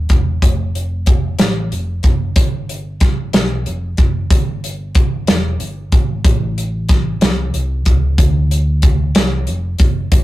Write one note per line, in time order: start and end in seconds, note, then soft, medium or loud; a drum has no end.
0.09 0.39 E1 medium
0.09 kick medium
0.09 closed hi-hat soft
0.42 1.35 F1 medium
0.42 kick medium
0.42 closed hi-hat medium
0.75 closed hi-hat soft
1.06 kick loud
1.06 closed hi-hat medium
1.39 1.69 A1 medium
1.39 snare medium
1.39 closed hi-hat medium
1.72 2.02 F1 medium
1.72 closed hi-hat soft
2.03 2.34 F#1 medium
2.03 kick medium
2.03 closed hi-hat soft
2.36 3.29 G1 medium
2.36 kick medium
2.36 closed hi-hat medium
2.69 closed hi-hat soft
3.00 kick medium
3.00 snare soft
3.00 closed hi-hat medium
3.33 3.63 B1 medium
3.33 snare loud
3.33 closed hi-hat medium
3.66 3.96 F1 medium
3.66 closed hi-hat soft
3.97 4.28 F#1 medium
3.97 kick medium
3.97 closed hi-hat soft
4.30 5.23 G1 medium
4.30 kick loud
4.30 closed hi-hat medium
4.64 closed hi-hat soft
4.95 kick medium
4.95 closed hi-hat medium
5.27 5.57 E1 medium
5.27 snare medium
5.27 closed hi-hat medium
5.60 5.89 G1 medium
5.60 closed hi-hat soft
5.92 6.22 G#1 medium
5.92 kick medium
5.92 closed hi-hat soft
6.24 7.17 A1 medium
6.24 kick loud
6.24 closed hi-hat medium
6.58 closed hi-hat soft
6.89 kick medium
6.89 snare soft
6.89 closed hi-hat medium
7.21 7.51 C2 medium
7.21 snare medium
7.21 closed hi-hat medium
7.54 7.83 C2 medium
7.54 closed hi-hat soft
7.85 8.16 C#2 medium
7.85 kick medium
7.85 closed hi-hat soft
8.18 9.11 D2 medium
8.18 kick medium
8.18 closed hi-hat medium
8.51 closed hi-hat soft
8.82 kick medium
8.82 closed hi-hat medium
9.15 9.45 C2 medium
9.15 snare loud
9.15 closed hi-hat medium
9.47 9.77 F1 medium
9.47 closed hi-hat soft
9.79 10.09 F#1 medium
9.79 kick medium
9.79 closed hi-hat soft
10.12 10.24 G1 loud
10.12 kick loud
10.12 closed hi-hat loud